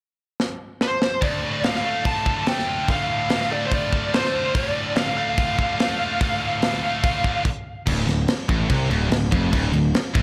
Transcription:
0.40 snare
0.81 C5, snare
1.02 snare
1.22 D2 D5, kick, open hi-hat
1.43 A2
1.63 D3 F5, snare, open hi-hat
1.76 snare
1.85 A3
2.04 A2 F4 A5, kick, open hi-hat
2.26 D3, kick
2.47 A3 G5, snare, open hi-hat
2.59 snare
2.67 D3 F4
2.88 D2 F5, kick, open hi-hat
3.09 A2
3.29 D3, snare, open hi-hat
3.41 snare
3.51 A3 D5
3.65 C5
3.71 A2 F4 D5, kick, open hi-hat
3.92 D3, kick
4.13 A3 C5, snare, open hi-hat
4.25 snare
4.34 D3 F4
4.54 D2 D5, kick, open hi-hat
4.75 A2
4.96 D3 F5, snare, open hi-hat
5.17 A3 F5
5.38 A2 F4, kick, open hi-hat
5.58 D3, kick
5.80 A3, snare, open hi-hat
6.00 D3 F4
6.20 D2, kick, open hi-hat
6.42 A2
6.62 D3, snare, open hi-hat
6.73 snare
6.84 A3
7.04 A2 F4, kick, open hi-hat
7.24 D3, kick
7.45 kick, crash
7.87 D1 D2, kick, crash
8.07 D1 D2, snare, crash
8.28 snare, crash
8.49 A1 A2, kick, crash
8.70 C2 C3, kick, crash
8.90 D1 D2, crash
9.11 D1 D2, snare, crash
9.31 F1 F2, kick, crash
9.52 D1 D2, kick, crash
9.73 D1 D2, crash
9.94 snare, crash
10.15 A1 A2, kick, crash

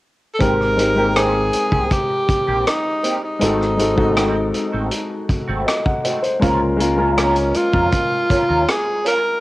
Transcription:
0.35 A4
0.39 G#1 G#3 A#3 C4 D#4 G4 A#4, kick, closed hi-hat
0.61 cross-stick
0.77 G#3 C4 D#4 G4 A#4, muted clean electric guitar stroke, closed hi-hat
0.95 G#3 A#3 C4 D#4 G4 A#4 G5
1.15 A#3 C4 G4 G#4, cross-stick, closed hi-hat
1.53 muted clean electric guitar stroke, muted fingered electric bass stroke, closed hi-hat
1.72 C2 A#3 C4 G4, kick
1.91 G4, muted clean electric guitar stroke, kick, closed hi-hat
2.10 muted clean electric guitar stroke
2.29 muted fingered electric bass stroke, kick, closed hi-hat
2.47 A#1 A#3 C4 G4
2.66 D#4, muted clean electric guitar stroke, cross-stick, closed hi-hat
3.03 A#3 C4 G4, closed hi-hat
3.23 D#4, muted clean electric guitar stroke
3.39 G#1 G#3 A3 C4 D#4 F#4 A4, closed hi-hat
3.61 cross-stick
3.77 G#3 C4 D#4 F#4, muted clean electric guitar stroke, closed hi-hat
3.81 A4
3.95 G#3 C4 D#4 F#4 A4, kick
3.99 A3
4.16 A3 C4 F#4, cross-stick, closed hi-hat
4.54 muted clean electric guitar stroke, closed hi-hat
4.72 A1 A3 C4 F#4
4.91 muted clean electric guitar stroke, closed hi-hat
5.10 muted clean electric guitar stroke
5.29 muted fingered electric bass stroke, kick, closed hi-hat
5.48 G#1 A3 C4 F#4
5.67 D#5, muted clean electric guitar stroke, cross-stick, closed hi-hat
5.86 F#5, kick
6.04 A3 C4 F#4 D#5, closed hi-hat
6.22 C5, muted clean electric guitar stroke, closed hi-hat
6.39 C#2 G#3 A#3 C#4 F4 A#4, kick, closed hi-hat
6.77 G#3 A#3 C#4 F4 A#4, muted clean electric guitar stroke, closed hi-hat
6.97 G#3 A#3 C#4 F4 A#4
7.17 C#4 F4 A#4, cross-stick, closed hi-hat
7.36 closed hi-hat
7.54 F4, muted clean electric guitar stroke, muted fingered electric bass stroke, closed hi-hat
7.73 F2 C#4 F4 A#4, kick
7.92 muted clean electric guitar stroke, kick, closed hi-hat
8.12 muted clean electric guitar stroke
8.30 C#4 F4 A#4, muted fingered electric bass stroke, kick, closed hi-hat
8.49 D#2 C#4 F4 A#4
8.67 G#4, muted clean electric guitar stroke, cross-stick, closed hi-hat
9.05 C#4 F4 A#4, closed hi-hat
9.24 muted clean electric guitar stroke

